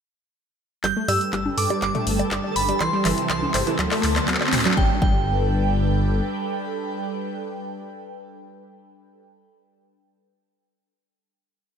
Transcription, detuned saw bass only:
0.84 0.92 G1 medium
1.08 1.17 G2 loud
1.33 1.49 G1 medium
1.58 1.66 G2 medium
1.82 1.90 G1 loud
2.07 2.23 G1 loud
2.31 2.39 G1 loud
2.56 2.72 G1 medium
2.81 2.89 C2 medium
3.05 3.13 G1 loud
3.30 3.46 C2 loud
3.54 3.62 G1 medium
3.79 3.87 D2 loud
4.04 4.19 D2 loud
4.28 4.36 D2 loud
4.53 4.69 D2 medium
4.77 4.91 G1 medium
5.02 6.21 G1 loud

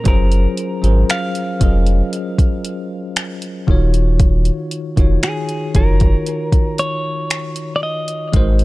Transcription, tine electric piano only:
0.04 0.52 F#3 medium
0.04 0.53 C#4 medium
0.04 0.53 F4 medium
0.04 0.54 G#4 medium
0.04 0.54 A#4 medium
0.04 0.54 C5 loud
0.82 1.30 F#3 medium
0.82 1.31 C#4 medium
0.82 1.31 F4 medium
0.82 1.31 G#4 medium
0.82 1.32 A#4 medium
0.82 1.32 C5 medium
1.60 2.87 F#3 medium
1.60 2.87 C#4 medium
1.60 2.88 F4 medium
1.60 2.88 G#4 medium
1.60 2.89 A#4 medium
1.60 2.89 D#5 medium
3.67 4.71 D#3 medium
3.67 4.71 D#4 medium
3.67 4.72 F4 medium
3.67 4.72 F#4 medium
3.67 4.73 C#5 loud
4.96 5.44 D#3 medium
4.96 5.45 D#4 medium
4.96 5.45 F4 medium
4.96 5.46 F#4 medium
4.96 5.46 C#5 medium
5.74 7.01 D#3 medium
5.74 7.02 D#4 medium
5.74 7.02 F4 medium
5.74 7.03 F#4 medium
5.74 7.03 C#5 medium
8.32 8.64 G#3 medium
8.32 8.64 D#4 medium
8.32 8.64 F#4 medium
8.32 8.64 A#4 medium
8.32 8.64 C5 loud

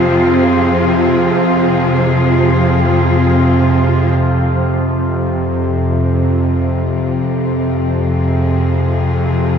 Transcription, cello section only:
0.00 4.20 F3 medium
0.00 4.21 C4 medium
0.00 4.21 F4 medium
0.00 4.21 G#4 medium
4.21 9.58 F3 medium
5.08 9.58 C4 medium
5.76 9.58 F4 medium
8.11 9.58 G#4 medium

